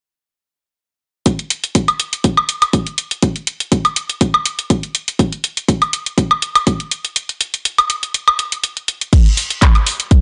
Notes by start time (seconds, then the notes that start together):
1.26 kick, closed hi-hat
1.39 closed hi-hat
1.50 closed hi-hat
1.64 closed hi-hat
1.75 kick, closed hi-hat
1.88 closed hi-hat, high woodblock
2.00 closed hi-hat
2.13 closed hi-hat
2.24 kick, closed hi-hat
2.37 high woodblock
2.49 closed hi-hat
2.62 closed hi-hat, high woodblock
2.73 kick, closed hi-hat
2.87 closed hi-hat
2.98 closed hi-hat
3.11 closed hi-hat
3.22 kick, closed hi-hat
3.36 closed hi-hat
3.47 closed hi-hat
3.60 closed hi-hat
3.72 kick, closed hi-hat
3.85 closed hi-hat, high woodblock
3.96 closed hi-hat
4.10 closed hi-hat
4.21 kick, closed hi-hat
4.34 high woodblock
4.46 closed hi-hat
4.59 closed hi-hat
4.70 kick, closed hi-hat
4.83 closed hi-hat
4.95 closed hi-hat
5.08 closed hi-hat
5.19 kick, closed hi-hat
5.33 closed hi-hat
5.44 closed hi-hat
5.57 closed hi-hat
5.68 kick, closed hi-hat
5.82 closed hi-hat, high woodblock
5.93 closed hi-hat
6.06 closed hi-hat
6.18 kick, closed hi-hat
6.31 high woodblock
6.42 closed hi-hat
6.55 closed hi-hat, high woodblock
6.67 kick, closed hi-hat
6.80 closed hi-hat
6.91 closed hi-hat
7.05 closed hi-hat
7.16 closed hi-hat
7.29 closed hi-hat
7.41 closed hi-hat
7.54 closed hi-hat
7.65 closed hi-hat
7.78 closed hi-hat, high woodblock
7.90 closed hi-hat
8.03 closed hi-hat
8.14 closed hi-hat
8.28 high woodblock
8.39 closed hi-hat
8.52 closed hi-hat
8.64 closed hi-hat
8.77 closed hi-hat
8.88 closed hi-hat
9.01 closed hi-hat
9.13 kick, closed hi-hat, crash
9.26 closed hi-hat
9.37 open hi-hat
9.50 closed hi-hat
9.62 kick, clap, closed hi-hat
9.75 closed hi-hat, high woodblock
9.86 open hi-hat
10.00 closed hi-hat
10.11 kick, closed hi-hat